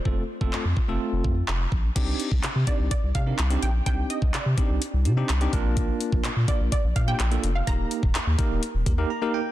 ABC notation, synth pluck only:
X:1
M:4/4
L:1/16
Q:1/4=126
K:Cdor
V:1 name="Synth pluck"
c12- c2 z2 | z6 d2 d2 f4 g2 | g2 e2 d4 z8 | z6 d2 d2 f g4 f |
b12 z4 |]